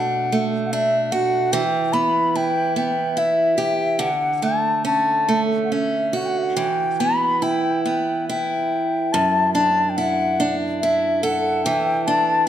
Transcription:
0.00 1.54 B2 medium
0.00 0.31 A3 soft
0.00 0.72 D4 soft
0.00 0.43 F#5 medium
0.32 1.62 A3 soft
0.66 0.73 F#5 soft
0.71 1.62 D4 soft
0.71 1.13 E5 medium
1.12 1.61 F#4 medium
1.12 1.54 F#5 medium
1.52 4.00 E3 medium
1.52 1.94 G5 medium
1.93 2.75 B3 soft
1.93 2.38 B5 medium
2.35 3.16 E4 soft
2.35 2.77 G5 medium
2.76 4.08 B3 soft
2.76 3.20 G5 medium
3.17 4.08 E4 soft
3.17 4.01 E5 medium
3.58 4.08 G4 soft
3.99 6.56 D3 medium
3.99 4.44 F#5 medium
4.42 5.27 A3 soft
4.42 4.85 A5 medium
4.85 5.70 C#4 soft
4.85 5.41 A5 medium
5.28 6.66 A3 soft
5.65 5.73 F#5 soft
5.72 6.67 C#4 soft
5.72 6.18 E5 soft
6.13 7.45 F#4 soft
6.13 6.27 F#5 soft
6.26 6.40 F#5 soft
6.26 6.30 G5 soft
6.38 6.45 E5 soft
6.43 6.57 F#5 medium
6.55 9.17 E3 medium
6.55 7.02 G5 medium
7.00 7.84 B3 soft
7.00 7.44 B5 medium
7.42 8.29 E4 soft
7.42 7.84 G5 medium
7.85 9.23 B3 soft
7.85 8.26 G5 medium
8.29 9.58 E4 soft
8.29 9.14 G5 medium
9.12 11.64 F#2 medium
9.12 9.53 A5 medium
9.54 10.39 D4 soft
9.54 9.91 A5 medium
9.90 9.98 G5 soft
9.97 10.83 E4 soft
9.97 10.55 F#5 medium
10.40 12.07 D4 soft
10.80 12.11 E4 soft
10.80 11.25 E5 medium
11.23 12.48 A4 medium
11.23 11.65 F#5 medium
11.64 12.48 E3 medium
11.64 12.09 G5 medium
12.07 12.48 D4 soft
12.07 12.48 A5 medium

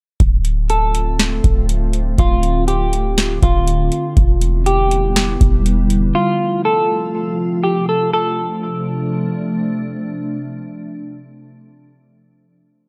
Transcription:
0.20 1.40 D1 loud
0.20 6.11 D3 medium
0.20 4.13 A3 medium
0.20 4.13 C4 medium
0.20 4.13 F4 medium
0.20 kick loud
0.20 closed hi-hat medium
0.45 closed hi-hat medium
0.70 1.65 A4 medium
0.70 closed hi-hat medium
0.95 closed hi-hat medium
1.19 snare loud
1.19 closed hi-hat medium
1.44 2.16 D1 loud
1.44 kick medium
1.44 closed hi-hat medium
1.69 closed hi-hat medium
1.93 closed hi-hat medium
2.18 3.38 D1 loud
2.18 2.65 F4 medium
2.18 kick loud
2.18 closed hi-hat medium
2.43 closed hi-hat medium
2.68 3.38 G4 medium
2.68 closed hi-hat medium
2.93 closed hi-hat medium
3.18 snare loud
3.18 closed hi-hat medium
3.43 3.90 D1 loud
3.43 4.13 F4 medium
3.43 kick medium
3.43 closed hi-hat medium
3.67 closed hi-hat medium
3.92 closed hi-hat medium
4.17 5.37 E1 loud
4.17 6.13 G3 medium
4.17 6.13 B3 medium
4.17 6.13 E4 medium
4.17 kick loud
4.17 closed hi-hat medium
4.41 closed hi-hat medium
4.66 5.62 G4 medium
4.66 closed hi-hat medium
4.91 closed hi-hat medium
5.16 snare loud
5.16 closed hi-hat medium
5.41 6.12 E1 loud
5.41 kick medium
5.41 closed hi-hat medium
5.66 closed hi-hat medium
5.90 closed hi-hat medium
6.15 8.12 C3 medium
6.15 8.12 F3 medium
6.15 8.12 A3 medium
6.15 6.62 F4 loud
6.15 8.12 F4 medium
6.65 7.60 A4 medium
7.64 7.87 G4 medium
7.89 8.12 A4 medium
8.13 11.59 C3 medium
8.13 11.59 F3 medium
8.13 11.59 A3 medium
8.13 11.59 D4 medium
8.13 9.58 A4 medium

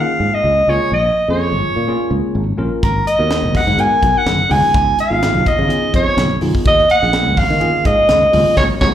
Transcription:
0.00 0.51 A#3 medium
0.00 0.51 C#4 medium
0.00 0.51 F4 medium
0.00 0.51 G#4 medium
0.00 0.36 F5 medium
0.20 0.30 G#2 medium
0.34 0.71 D#5 medium
0.44 0.62 C#2 medium
0.67 0.77 C#2 medium
0.67 0.92 A#3 medium
0.67 0.92 C#4 medium
0.67 0.92 F4 medium
0.67 0.92 G#4 medium
0.67 0.93 C#5 medium
0.91 1.10 A#1 medium
0.91 1.27 D#5 medium
1.28 1.54 F2 medium
1.28 1.74 A#3 medium
1.28 1.74 C#4 medium
1.28 1.74 F4 medium
1.28 1.74 G#4 medium
1.28 2.21 C#5 medium
1.52 1.60 G#1 medium
1.76 1.94 A#2 medium
1.87 2.42 A#3 medium
1.87 2.43 C#4 medium
1.87 2.43 F4 medium
1.87 2.43 G#4 medium
2.11 2.20 C#2 medium
2.35 2.53 G#1 medium
2.58 2.68 A#1 medium
2.58 2.82 A#3 medium
2.58 2.82 C#4 medium
2.58 2.82 F4 medium
2.58 2.83 A#4 loud
2.83 3.01 G#1 medium
2.83 3.05 A#4 medium
2.83 kick loud
2.83 closed hi-hat medium
3.07 3.58 D#5 loud
3.07 closed hi-hat medium
3.19 3.44 D#2 medium
3.19 3.64 B3 medium
3.19 3.65 D#4 medium
3.19 3.65 F#4 medium
3.19 3.65 A#4 medium
3.31 snare loud
3.31 closed hi-hat medium
3.43 3.51 F#1 medium
3.43 high conga medium
3.55 3.82 F#5 loud
3.55 kick medium
3.55 open hi-hat medium
3.55 low conga medium
3.67 3.85 G#2 medium
3.67 high conga medium
3.77 4.33 B3 medium
3.77 4.33 D#4 medium
3.77 4.34 F#4 medium
3.77 4.33 A#4 medium
3.77 4.19 G#5 medium
3.77 closed hi-hat medium
4.03 4.12 B1 medium
4.03 kick medium
4.03 closed hi-hat medium
4.18 4.53 F#5 loud
4.26 4.44 F#1 medium
4.26 snare loud
4.26 closed hi-hat medium
4.26 high conga medium
4.49 4.60 C#2 medium
4.49 4.97 B3 medium
4.49 4.98 D#4 medium
4.49 4.98 F4 medium
4.49 4.98 G#4 medium
4.49 4.99 G#5 loud
4.49 open hi-hat medium
4.49 high conga medium
4.49 low conga medium
4.74 4.92 C#2 medium
4.74 kick loud
4.74 closed hi-hat medium
4.99 5.49 F5 medium
4.99 closed hi-hat medium
5.10 5.35 G#1 medium
5.10 5.56 B3 medium
5.10 5.56 D#4 medium
5.10 5.56 F4 medium
5.10 5.56 G#4 medium
5.23 snare loud
5.23 closed hi-hat medium
5.35 5.43 B1 medium
5.35 high conga medium
5.46 5.94 D#5 loud
5.46 kick medium
5.46 closed hi-hat medium
5.46 low conga medium
5.59 5.77 C#3 medium
5.59 high conga medium
5.68 6.24 B3 medium
5.68 6.24 D#4 medium
5.68 6.24 F4 medium
5.68 6.24 G#4 loud
5.68 closed hi-hat medium
5.94 6.04 F2 medium
5.94 6.39 C#5 medium
5.94 kick medium
5.94 closed hi-hat medium
6.17 6.35 B1 medium
6.17 snare loud
6.17 closed hi-hat medium
6.17 high conga medium
6.41 6.51 B1 medium
6.41 6.65 B3 medium
6.41 6.66 D#4 medium
6.41 6.66 F4 medium
6.41 6.66 G#4 medium
6.41 open hi-hat medium
6.41 high conga medium
6.55 kick medium
6.65 6.84 D#2 medium
6.65 6.89 D#5 loud
6.65 kick loud
6.65 closed hi-hat medium
6.78 snare soft
6.90 7.40 F#5 loud
6.90 closed hi-hat medium
7.02 7.26 A#1 medium
7.02 7.48 F3 medium
7.02 7.48 A#3 medium
7.02 7.48 C#4 medium
7.02 7.48 G#4 medium
7.02 snare soft
7.13 snare loud
7.13 closed hi-hat medium
7.26 7.35 C#2 medium
7.26 high conga medium
7.37 7.87 F5 loud
7.37 kick medium
7.37 open hi-hat medium
7.37 low conga medium
7.50 7.68 D#3 medium
7.50 high conga medium
7.60 8.16 A#3 medium
7.60 8.16 C#4 medium
7.60 8.16 F4 medium
7.60 8.16 G#4 medium
7.60 closed hi-hat medium
7.85 7.95 G#2 medium
7.85 8.57 D#5 medium
7.85 kick medium
7.85 closed hi-hat medium
8.09 8.27 C#2 medium
8.09 snare loud
8.09 closed hi-hat medium
8.09 high conga medium
8.32 8.43 C#2 medium
8.32 8.56 A#3 medium
8.32 8.56 C#4 medium
8.32 8.57 F4 medium
8.32 8.57 G#4 medium
8.32 open hi-hat medium
8.32 high conga medium
8.32 low conga medium
8.57 8.67 C#2 medium
8.57 8.65 B3 medium
8.57 8.65 C#4 loud
8.57 8.65 F#4 loud
8.57 8.63 C#5 loud
8.57 kick medium
8.57 snare medium
8.57 low conga loud
8.81 8.91 C#2 medium
8.81 8.90 B3 medium
8.81 8.90 C#4 medium
8.81 8.90 F#4 medium
8.81 8.87 C#5 medium
8.81 kick medium
8.81 snare medium
8.81 low conga loud

